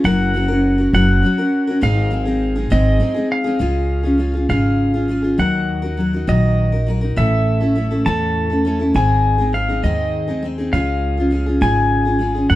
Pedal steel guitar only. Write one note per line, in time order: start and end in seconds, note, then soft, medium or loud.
0.05 0.93 F#5 loud
0.94 1.79 F#5 loud
1.83 2.68 F5 medium
2.72 3.31 D#5 medium
3.32 4.46 F5 medium
4.50 5.39 F5 medium
5.39 6.28 F#5 medium
6.29 6.91 D#5 medium
7.17 8.02 E5 medium
8.06 8.95 A5 medium
8.96 9.56 G#5 medium
9.54 9.85 F5 medium
9.84 10.46 D#5 medium
10.73 11.64 F5 medium
11.62 12.49 G#5 medium
12.50 12.55 F#5 medium